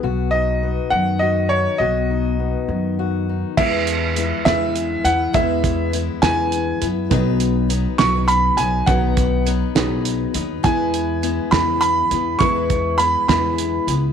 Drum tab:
CC |------|------|x-----|------|
HH |------|------|-xxxxx|xxxxxx|
SD |------|------|---o--|---o--|
BD |------|------|o-----|oo----|

CC |------|------|------|------|
HH |xxxxxx|xxxxxx|xxxxxx|xxxxxx|
SD |---o--|---o--|---o--|---o--|
BD |o-----|oo----|o-----|oo----|